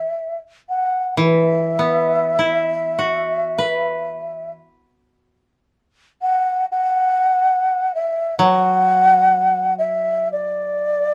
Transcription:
Already playing: E5
0.69 F#5
1.17 E3 E5
1.79 B3
2.39 E4
2.99 F#4
3.58 B4
6.21 F#5
6.71 F#5
7.94 E5
8.38 F#3 F#5
9.78 E5
10.32 D5

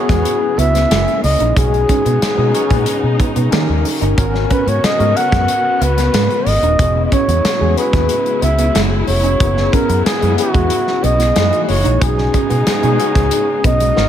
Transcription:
Already playing: C#3 E3 F#3 B3 C#4 E4 F#4 G#4
0.09 E2 G#3, kick, snare, closed hi-hat
0.25 muted clean electric guitar stroke, closed hi-hat
0.58 C#2 B3 E5, closed hi-hat
0.74 B3, snare, closed hi-hat
0.90 F#1 C#3 G#3 A#3 C#4 E4 F#4, snare, closed hi-hat
0.98 G#4
1.08 closed hi-hat
1.24 C#2 D#5, muted clean electric guitar stroke, open hi-hat
1.40 A#1 D#4, closed hi-hat
1.56 B1 C#3 B3 C#4 D#4 F#4 G#4, kick, closed hi-hat
1.73 muted clean electric guitar stroke, closed hi-hat
1.89 C#4, kick, closed hi-hat
2.05 B2 B3, closed hi-hat
2.22 muted fingered electric bass stroke, snare, closed hi-hat
2.37 B2 G#3 C#4 D#4 F#4 G#4
2.54 C#4 D#4 F#4 G#4, muted clean electric guitar stroke, closed hi-hat
2.70 A#2 G#3, kick, closed hi-hat
2.86 muted clean electric guitar stroke, closed hi-hat
3.03 B2
3.20 B3, kick, closed hi-hat
3.36 B2 B3, closed hi-hat
3.51 D#3 G3 A#3 C#4 D#4 G4 A#4, snare, closed hi-hat
3.69 D#2
3.85 muted clean electric guitar stroke, open hi-hat
4.01 G1 D#4, closed hi-hat
4.17 G#1 B3 C#4 F#4 A#4, kick, closed hi-hat
4.34 muted clean electric guitar stroke, snare
4.50 C#4 B4, kick, closed hi-hat
4.66 G#2 B3 C#5, closed hi-hat
4.83 D#5, muted fingered electric bass stroke, snare, closed hi-hat
4.99 G#2 G#3 B3 C#4 F#4 A#4, closed hi-hat
5.16 B3 C#4 F#4 A#4 F#5, muted clean electric guitar stroke, closed hi-hat
5.32 F#2 G#3, kick, snare, closed hi-hat
5.48 muted clean electric guitar stroke, closed hi-hat
5.81 C#2 B3 B4, closed hi-hat
5.97 B3, snare, closed hi-hat
6.14 G#2 G#3, snare, closed hi-hat
6.30 closed hi-hat
6.46 G#1 D#5, muted clean electric guitar stroke, open hi-hat
6.62 D#1 D#4, closed hi-hat
6.79 E1 F#3 G#3 B3 C#4 E4 F#4 G#4, kick, closed hi-hat
6.96 muted clean electric guitar stroke
7.06 D#5
7.12 C#4 C#5, kick, closed hi-hat
7.28 E2 B3, closed hi-hat
7.44 muted fingered electric bass stroke, snare, closed hi-hat
7.60 E2 G#3 B3 C#4 F#4 G#4
7.77 B3 C#4 F#4 G#4 B4, muted clean electric guitar stroke, closed hi-hat
7.93 D#2 G#3, kick, snare, closed hi-hat
8.09 muted clean electric guitar stroke, closed hi-hat
8.26 closed hi-hat
8.42 C#2 B3 E5, closed hi-hat
8.58 B3, closed hi-hat
8.75 F#1 G#3, snare, closed hi-hat
9.08 F1 C#5, muted clean electric guitar stroke, open hi-hat
9.24 C#4, closed hi-hat
9.40 F#1 C#3 B3 C#4 E4 G#4, kick, closed hi-hat
9.56 muted clean electric guitar stroke, snare
9.72 C#4 A#4, kick, closed hi-hat
9.89 F#2 B3, closed hi-hat
10.06 G#4, muted fingered electric bass stroke, snare, closed hi-hat
10.21 F#2 G#3 B3 C#4 E4 G#4, closed hi-hat
10.37 B3 C#4 E4 F#4 G#4, muted clean electric guitar stroke, closed hi-hat
10.54 E2 G#3, kick, closed hi-hat
10.70 muted clean electric guitar stroke, closed hi-hat
10.87 snare
11.03 B1 B3 D#5, closed hi-hat
11.19 B3, snare, closed hi-hat
11.35 F#2 E3 G#3 A#3 D#4 E4 F#4 G#4, snare, closed hi-hat
11.53 closed hi-hat
11.64 D#5
11.68 F#1 C#5, muted clean electric guitar stroke, open hi-hat
11.84 A#1 D#4, closed hi-hat
12.01 B1 C#3 G#3 B3 C#4 D#4 F#4 G#4, kick, closed hi-hat
12.17 muted clean electric guitar stroke, snare
12.34 C#4, kick, closed hi-hat
12.50 B2 B3, closed hi-hat
12.67 muted fingered electric bass stroke, snare, closed hi-hat
12.82 B2 G#3 C#4 D#4 F#4 G#4, closed hi-hat
12.98 C#4 D#4 F#4 G#4, muted clean electric guitar stroke, closed hi-hat
13.15 C#2 G#3, kick, snare, closed hi-hat
13.31 muted clean electric guitar stroke, closed hi-hat
13.64 B1 B3 D#5, kick, closed hi-hat
13.80 G#3, closed hi-hat
13.96 G#1 B2 G#3 B3 D#4 F#4 A#4, snare

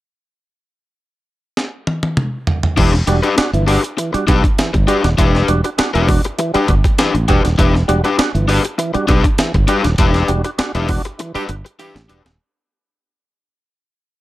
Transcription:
1.57 snare
1.87 high tom
2.03 high tom
2.17 mid tom
2.47 floor tom
2.63 floor tom
2.77 E1 E3 D4 G4 B4, kick, crash
2.93 muted overdriven electric guitar stroke, snare
3.07 E1 G3 D4 F#4, muted overdriven electric guitar stroke, closed hi-hat
3.23 D4 F#4 G4 B4, closed hi-hat
3.37 D4 F#4, muted overdriven electric guitar stroke, muted fingered electric bass stroke, snare, closed hi-hat
3.53 G1 E3, closed hi-hat
3.67 D4 F#4 G4 B4, open hi-hat
3.83 muted overdriven electric guitar stroke, closed hi-hat
3.97 E3, muted overdriven electric guitar stroke, closed hi-hat
4.13 G3 D4 F#4, muted overdriven electric guitar stroke, muted fingered electric bass stroke, closed hi-hat
4.27 B1 D4 F#4 G4 B4, kick, closed hi-hat
4.44 muted overdriven electric guitar stroke, kick, closed hi-hat
4.58 E3, muted fingered electric bass stroke, snare, closed hi-hat
4.74 G1, muted overdriven electric guitar stroke, kick, closed hi-hat
4.87 G3 D4 F#4 G4 B4, closed hi-hat
5.03 D#1 D4 F#4, muted overdriven electric guitar stroke, snare, closed hi-hat
5.18 E1 E3 D4 G4 B4, kick, closed hi-hat
5.35 snare
5.48 E1 G3 D4 F#4, closed hi-hat
5.64 D4 F#4, muted overdriven electric guitar stroke, closed hi-hat
5.78 D4 F#4, muted overdriven electric guitar stroke, muted fingered electric bass stroke, snare, closed hi-hat
5.94 E1 E3 D4 G4 B4, closed hi-hat
6.08 D4 F#4, muted overdriven electric guitar stroke, kick, open hi-hat
6.24 muted overdriven electric guitar stroke, closed hi-hat
6.38 E3, muted overdriven electric guitar stroke, closed hi-hat
6.54 G3 D4 F#4 G4 B4, muted fingered electric bass stroke, closed hi-hat
6.68 G1 D4 F#4, muted overdriven electric guitar stroke, kick, closed hi-hat
6.84 muted overdriven electric guitar stroke, kick, closed hi-hat
6.98 E3 D4 G4 B4, snare, closed hi-hat
7.14 A1, muted overdriven electric guitar stroke, closed hi-hat
7.28 E1 G3 D4 F#4 G4 B4, kick, closed hi-hat
7.44 D#1 D4 F#4, muted overdriven electric guitar stroke, snare, closed hi-hat
7.58 E1 E3 D4 G4 B4, kick, closed hi-hat
7.74 muted overdriven electric guitar stroke, snare
7.88 E1 G3 D4 F#4, muted overdriven electric guitar stroke, closed hi-hat
8.04 D4 F#4 G4 B4, closed hi-hat
8.18 D4 F#4, muted overdriven electric guitar stroke, muted fingered electric bass stroke, snare, closed hi-hat
8.34 G1 E3, closed hi-hat
8.48 D4 F#4 G4 B4, open hi-hat
8.64 muted overdriven electric guitar stroke, closed hi-hat
8.78 E3, muted overdriven electric guitar stroke, closed hi-hat
8.94 G3 D4 F#4, muted overdriven electric guitar stroke, muted fingered electric bass stroke, closed hi-hat
9.07 B1 D4 F#4 G4 B4, kick, closed hi-hat
9.24 muted overdriven electric guitar stroke, kick, closed hi-hat
9.38 E3, muted fingered electric bass stroke, snare, closed hi-hat
9.54 G1, muted overdriven electric guitar stroke, kick, closed hi-hat
9.68 G3 D4 F#4 G4 B4, closed hi-hat
9.84 D#1 D4 F#4, muted overdriven electric guitar stroke, snare, closed hi-hat
9.98 E1 E3 D4 G4 B4, kick, closed hi-hat
10.14 snare, closed hi-hat
10.28 E1 G3 D4 F#4, closed hi-hat
10.44 D4 F#4, muted overdriven electric guitar stroke, closed hi-hat
10.58 D4 F#4, muted overdriven electric guitar stroke, muted fingered electric bass stroke, snare, closed hi-hat
10.75 E1 E3 D4 G4 B4, closed hi-hat
10.88 D4 F#4, muted overdriven electric guitar stroke, kick, open hi-hat
11.05 muted overdriven electric guitar stroke, closed hi-hat
11.19 E3, muted overdriven electric guitar stroke, closed hi-hat
11.34 G3 D4 F#4 G4 B4, muted fingered electric bass stroke, closed hi-hat
11.49 G1 D4 F#4, muted overdriven electric guitar stroke, closed hi-hat
11.65 muted overdriven electric guitar stroke, closed hi-hat
11.79 E3 D4 G4 B4, closed hi-hat
11.95 A1, muted overdriven electric guitar stroke, snare, closed hi-hat
12.09 E1 G3 D4 F#4 G4 B4, closed hi-hat
12.25 D#1 D4 F#4, muted overdriven electric guitar stroke, snare, closed hi-hat

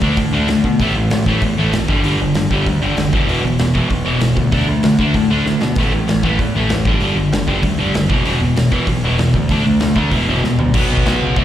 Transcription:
0.02 D2 D3 A3 D4, kick
0.17 A2 D3 A3, kick, open hi-hat
0.33 D2 D3 A3 D4
0.48 D2 D3 A3, snare, open hi-hat
0.64 B2 D3 A3, kick
0.80 A1 A2 E3 A3, kick, open hi-hat
0.95 A1 A2 E3
1.10 A1 A2 E3, snare, open hi-hat
1.26 A1 A2 E3 A3, kick
1.41 E2 A2 E3, kick, open hi-hat
1.58 A1 A2 E3 A3
1.73 G#1 A2 E3, snare, open hi-hat
1.88 G1 G2 D3 G3, kick
2.04 G1 G2 D3 G3, open hi-hat
2.21 G1 G2 D3
2.34 G1 G2 D3, snare, open hi-hat
2.50 G1 G2 D3 G3, kick
2.66 D2 G2 D3, kick, open hi-hat
2.82 G1 G2 D3 G3
2.97 F#1 G2 D3, snare, open hi-hat
3.13 E1 E2 B2 E3, kick
3.28 E1 E2 B2 E3, open hi-hat
3.43 E1 E2 B2
3.59 E1 E2 B2, snare, open hi-hat
3.74 E1 E2 B2 E3, kick
3.89 B1 E2 B2, kick, open hi-hat
4.05 E1 E2 B2 E3
4.20 E1 E2 B2, snare, open hi-hat
4.36 D2 E2 B2, kick
4.52 D2 D3 A3 D4, kick, open hi-hat
4.67 D2 D3 A3
4.83 D2 D3 A3, snare, open hi-hat
4.99 D2 D3 A3 D4, kick
5.14 A2 D3 A3, kick, open hi-hat
5.30 D2 D3 A3 D4
5.46 D2 D3 A3, snare
5.61 B2 D3 A3, snare
5.76 A1 A2 E3 A3, kick, open hi-hat
5.91 A1 A2 E3
6.07 A1 A2 E3, snare, open hi-hat
6.23 A1 A2 E3 A3, kick
6.39 E2 A2 E3, kick, open hi-hat
6.55 A1 A2 E3 A3
6.69 A1 A2 E3, snare, open hi-hat
6.85 G1 G2 D3 G3, kick
7.00 G1 G2 D3 G3, open hi-hat
7.16 G1 G2 D3
7.32 G1 G2 D3, snare, open hi-hat
7.48 G1 G2 D3 G3, kick
7.63 D2 G2 D3, kick, open hi-hat
7.78 G1 G2 D3 G3
7.93 F#1 G2 D3, snare, open hi-hat
8.08 E1 E2 B2 E3, kick
8.25 E1 E2 B2 E3, open hi-hat
8.41 E1 E2 B2
8.56 E1 E2 B2, snare, open hi-hat
8.71 E1 E2 B2 E3, kick
8.87 B1 E2 B2, kick, open hi-hat
9.03 E1 E2 B2 E3
9.18 E1 E2 B2, snare, open hi-hat
9.34 D2 E2 B2, kick
9.49 D2 D3 A3 D4, kick, open hi-hat
9.65 D2 D3 A3
9.80 D2 D3 A3, snare, open hi-hat
9.95 D2 D3 A3 D4, kick
10.11 E1 E2 B2 E3, kick, open hi-hat
10.28 E1 E2 B2 E3
10.43 E1 E2 B2, snare
10.59 D2 E2 B2, floor tom
10.74 B1 B2 F#3, kick, crash
10.78 B3
10.89 B1
10.97 kick
11.05 B1, snare, crash
11.22 C#2
11.36 D2 D3 A3, kick, crash
11.41 D4

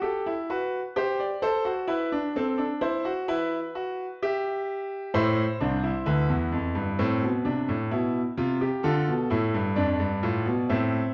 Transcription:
0.02 G4 A4
0.26 E4
0.50 F#4 B4
0.96 G4 C5
1.20 D5
1.42 A4 C5
1.65 F#4
1.88 E4 B4
2.12 D4
2.36 C4 A4
2.58 D4
2.81 E4 C5
3.05 F#4
3.28 E4 B4
3.75 F#4
4.22 G4 E5
5.14 A2 E4 C5
5.60 C2 D4
5.83 E4
6.06 D2 B4
6.29 E2
6.52 F2
6.75 G2
6.99 A2 C4
7.23 B2
7.45 C3 D4
7.68 A2
7.91 B2 E4
8.37 C3 F4
8.61 G4
8.83 D3 F4 A4
9.08 B2
9.30 A2 E4
9.54 G2
9.76 F2 D4 D5
10.00 G2
10.23 A2 F4
10.46 B2
10.69 A2 C4 E5

